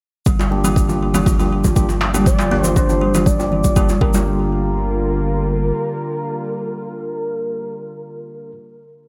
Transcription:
0.26 G1 D3 G3 A#3 F4, kick, shaker
0.39 G3, djembe slap, djembe tone, shaker
0.51 A#3 D4 F4 G4, muted conga
0.64 G3, djembe tone, low conga, shaker
0.76 kick, shaker
0.89 A#3 D4 F4 G4, muted conga, djembe tone, low conga, shaker
1.14 G3, djembe tone, low conga, shaker
1.26 F3, kick, muted conga, djembe bass, shaker
1.39 G3 A#3 D4 F4 G4, djembe tone, djembe bass, shaker
1.64 kick, muted conga, djembe tone, high conga, low conga, shaker
1.76 A#3 D4 F4 G4, kick, shaker
1.89 djembe tone, shaker
2.01 djembe slap, muted conga, high conga
2.14 G3 A#3 D4 F4 G4, high conga, djembe tone, shaker
2.26 F3 G4 D5, kick, shaker
2.39 G3, djembe slap, djembe tone, shaker
2.51 A#3 D4 F4 G4, muted conga, djembe bass
2.64 F3 C5, djembe tone, low conga, shaker
2.76 D4 C5, kick, shaker
2.89 A#3 D4 F4 G4, muted conga, djembe tone, low conga, shaker
3.01 G3, high conga
3.14 G3, djembe tone, low conga, shaker
3.26 D5, kick, muted conga, high conga, shaker
3.39 A#3 D4 F4 G4, djembe tone, shaker
3.52 low conga
3.64 kick, muted conga, high conga, djembe tone, shaker
3.76 G3 A#3 D4 F4 G4, kick, shaker
3.89 djembe tone, high conga, shaker
4.01 G1 D3 G3 A#3 D4 F4 G4 A#4, kick, muted conga
4.14 djembe slap, high conga, djembe tone, shaker

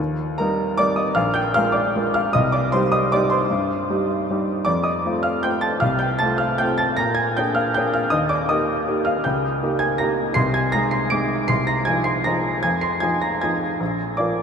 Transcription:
0.00 D#2
0.38 G3 D#4 A#4 A#5
0.78 G3 D#4 A#4 D5 D6
0.96 D#5 D#6
1.15 A#1 F5 F6
1.34 G5 G6
1.54 G#3 F4 A#4 F5 F6
1.72 D5 D6
1.96 G#3 F4 A#4
2.14 F5 F6
2.33 C2 D#5 D#6
2.52 D5 D6
2.72 G3 D#4 G4 C5 C6
2.92 D#5 D#6
3.12 G3 D#4 G4 D5 D6
3.30 C5 C6
3.51 G2
3.90 G3 D#4 G4
4.31 G3 D#4 G4
4.65 F2 D5 D6
4.84 D#5 D#6
5.06 A3 C4 F4
5.23 F5 F6
5.43 A3 C4 F4 G5 G6
5.61 A5 A6
5.80 C2 F5 F6
5.99 G5 G6
6.19 A3 C4 F4 A5 A6
6.38 F5 F6
6.58 A3 C4 F4 G5 G6
6.78 A5 A6
6.97 A#2 A#5 A#6
7.15 G#5 G#6
7.37 A#3 D4 G#4 G5 G6
7.55 F5 F6
7.74 A#3 D4 G#4 G5 G6
7.94 F5 F6
8.10 D#2 D#5 D#6
8.29 D5 D6
8.49 A#3 D#4 G4 D#5 D#6
8.88 A#3 D#4 G4
9.05 F5 F6
9.24 C#2 G5 G6
9.63 A#3 D#4 G4
9.79 G#5 G#6
9.98 A#3 D#4 G4 A#5 A#6
10.34 C2 C6 C7
10.54 G#5 G#6
10.72 G#3 D#4 G#4 A#5 A#6
10.91 C6 C7
11.10 G#3 D#4 G#4 D6 D7
11.48 C2 C6 C7
11.67 A#5 A#6
11.85 F3 D#4 G#4 G#5 G#6
12.04 C6 C7
12.24 F3 D#4 G#4 A#5 A#6
12.63 F2 G#5 G#6
12.81 C6 C7
13.00 F3 D#4 G#4 G#5 G#6
13.22 A#5 A#6
13.41 F3 D#4 G#4 G#5 G#6
13.81 A#1
14.17 F3 F4 A#4 D5 D6

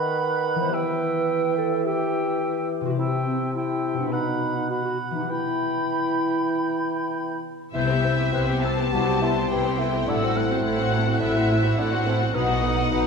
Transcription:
Already playing: D#3 B3 F#4 B4 F#5 B5
0.55 E3
0.60 B3 C5
0.64 E4
0.69 G4 B4
0.73 E3 E5 G5
1.58 A4
1.85 G4 E5 G5
2.81 C3
2.85 C4 F#4
2.90 E4
2.94 G4
2.99 C3 E4 E5 G5
3.26 C4
3.55 E4 E5 G5
3.94 B2
3.98 B3 D4
4.03 F#4
4.07 B4
4.12 B2 D#4 F#5 B5
4.56 D#4
4.70 F#4 F#5 B5
4.85 F#4
5.11 E3
5.16 B3 D#4
5.20 G4
5.24 B4
5.30 E3 E4 G5 B5
7.74 C2 C3 B3 E4 G4 B4 C5 E5 G6
7.88 B3 C4 G4 C5
8.03 B3 E4 B4 C5
8.18 B3 C4 G4 C5
8.32 C2 C3 B3 E4 G4 B4 C5 F#6
8.48 B3 C4 G4 C5
8.63 B3 E4 G4 B4 C5 A5 E6
8.78 B3 C4 G4 C5
8.92 C2 C3 G3 B3 E4 F#4 B4 C5 D6
9.07 B3 C4 G4 C5
9.22 B3 E4 B4 C5 C6
9.36 B3 C4 G4 C5
9.50 C2 C3 B3 E4 G4 B4 C5 G5
9.65 B3 C4 G4 C5
9.79 B3 E4 G4 A4 B4 C5
9.94 B3 C4 G4 C5
10.08 A1 A2 A3 C4 D4 E4 A4 F#5 E6
10.22 C4 F#4 C5
10.36 A3 C4 E4 A4 F#6
10.50 C4 F#4 C5
10.64 A1 A2 A3 E4 A4 C5 F#5
10.79 C4 F#4 C5
10.93 A3 E4 F#4 A4
11.07 C4 F#4 C5
11.21 A1 A2 A3 E4 A4 E5
11.35 C4 F#4 C5
11.49 A3 E4 A4
11.64 C4 F#4 C5
11.77 A1 A2 A3 D4 E4 A4 C5 D5 F#5 F#6
11.92 C4 F#4 C5
12.06 A3 C4 E4 F#4 A4 C5
12.21 C4 F#4 C5
12.34 B1 B2 F#3 B3 D#4 B4 F#5 D#6
12.49 B3 F#4 D#5
12.62 F#3 D#4 A4 B4
12.77 B3 F#4 D#5
12.91 B1 B2 F#3 D#4 B4 D#6

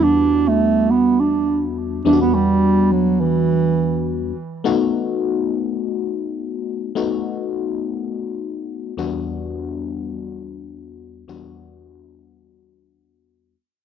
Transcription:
Already playing: E2 G3 B3 D4 F#4
0.04 D4
0.48 A3
0.91 B3
1.20 D4
2.05 E2 G3 B3 D4 E4
2.13 F#4
2.21 B3
2.34 G3
2.92 F#3
3.21 E3
4.64 A3 B3 D#4 F#4
6.95 A3 B3 D#4 F#4
8.97 E2 G3 B3 D4 F#4
11.28 E2 G3 B3 D4 F#4

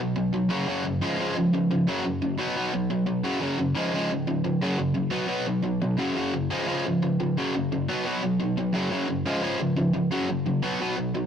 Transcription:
0.00 B2 F#3
0.16 B2 F#3
0.33 B2 F#3
0.49 F#2 C#3 F#3
0.68 F#2 C#3 F#3
0.85 F#2 C#3
1.02 C#3 F3 G#3
1.19 C#3 F3 G#3
1.36 C#3 F3
1.53 C#3 F3
1.71 C#3 F3
1.88 F#2 C#3 F#3
2.05 F#2 C#3
2.22 F#2 C#3
2.38 B2 F#3 B3
2.56 B2 F#3 B3
2.74 B2 F#3
2.90 B2 F#3
3.06 B2 F#3
3.24 F#2 C#3 F#3
3.40 F#2 C#3 F#3
3.58 F#2 C#3
3.75 C#3 F3 G#3
3.93 C#3 F3 G#3
4.11 C#3 F3
4.27 C#3 F3
4.44 C#3 F3
4.62 F#2 C#3 F#3
4.79 F#2 C#3
4.95 F#2 C#3
5.11 B2 F#3 B3
5.27 B2 F#3 B3
5.47 B2 F#3
5.63 B2 F#3
5.82 B2 F#3
5.97 F#2 C#3 F#3
6.16 F#2 C#3 F#3
6.34 F#2 C#3
6.50 C#3 F3 G#3
6.67 C#3 F3 G#3
6.85 C#3 F3
7.02 C#3 F3
7.20 C#3 F3
7.37 F#2 C#3 F#3
7.55 F#2 C#3
7.72 F#2 C#3
7.89 B2 F#3 B3
8.05 B2 F#3 B3
8.23 B2 F#3
8.40 B2 F#3
8.57 B2 F#3
8.73 F#2 C#3 F#3
8.91 F#2 C#3 F#3
9.09 F#2 C#3
9.26 C#3 F3 G#3
9.42 C#3 F3 G#3
9.60 C#3 F3
9.77 C#3 F3
9.94 C#3 F3
10.11 F#2 C#3 F#3
10.29 F#2 C#3
10.46 F#2 C#3
10.63 B2 F#3 B3
10.80 B2 F#3 B3
10.97 B2 F#3
11.15 B2 F#3

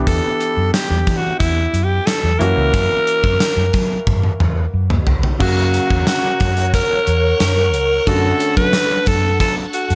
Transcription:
Already playing: E3 B3 D4 G4
0.07 E2 A4, kick, closed hi-hat
0.40 closed hi-hat
0.57 F#2
0.73 G4, snare, closed hi-hat
0.90 E2
1.07 E3, kick, closed hi-hat
1.17 F#4
1.39 E2 E4, kick, closed hi-hat
1.73 F#2, closed hi-hat
1.84 G4
2.06 A4, snare, closed hi-hat
2.23 E2
2.39 F#2 E3 A#3 C#4 F#4 A#4, closed hi-hat
2.57 C#2
2.74 F#2, kick, closed hi-hat
3.07 closed hi-hat
3.24 F#2, kick
3.40 snare, closed hi-hat
3.57 F#2
3.73 F#3, kick, closed hi-hat
4.07 F#2, kick, high tom
4.24 high tom
4.40 E2, mid tom
4.74 F#2
4.90 mid tom
5.07 C#2, floor tom
5.23 floor tom
5.39 F#2 C#3 F#3 A#3 F#4 A#4 C#5 F#5 C#6, kick, crash
5.74 closed hi-hat
5.90 E2, kick
6.07 F#4, snare, closed hi-hat
6.40 F#2, kick, closed hi-hat
6.57 closed hi-hat
6.74 A#4, kick, closed hi-hat
7.07 E2, closed hi-hat
7.40 F#2 A#4, snare, closed hi-hat
7.74 C#2, closed hi-hat
8.07 F#2 D3 A3 C#4 F#4 A4, kick, closed hi-hat
8.40 closed hi-hat
8.57 F#3 B4, kick
8.73 snare, closed hi-hat
9.06 F#2 A4, kick, closed hi-hat
9.40 F#3 A4, kick, closed hi-hat
9.73 F#4, closed hi-hat
9.90 F#2, closed hi-hat

